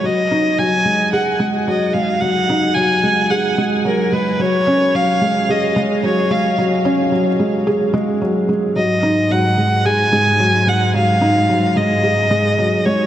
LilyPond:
<<
  \new Staff \with { instrumentName = "Violin" } { \time 4/4 \key cis \mixolydian \tempo 4 = 110 dis''4 gis''4 fis''8 r8 dis''8 eis''8 | fis''4 gis''4 fis''8 r8 ais'8 b'8 | cis''4 eis''4 dis''8 r8 cis''8 eis''8 | r1 |
dis''4 fis''4 gis''4. fis''8 | eis''4. dis''2 cis''8 | }
  \new Staff \with { instrumentName = "Felt piano" } { \clef bass \time 4/4 \key cis \mixolydian fis8 dis'8 fis8 gis8 gis'8 gis8 fis8 gis8 | fis8 dis'8 fis8 gis8 gis'8 gis8 fis8 gis8 | fis8 cis'8 fis8 gis8 gis'8 gis8 fis8 gis8 | fis8 cis'8 fis8 gis8 gis'8 gis8 fis8 gis8 |
fis8 dis'8 fis8 gis8 gis'8 gis8 fis8 gis8 | fis8 dis'8 fis8 gis8 gis'8 gis8 fis8 gis8 | }
  \new Staff \with { instrumentName = "Cello section" } { \clef bass \time 4/4 \key cis \mixolydian r1 | r1 | r1 | r1 |
gis,1~ | gis,1 | }
>>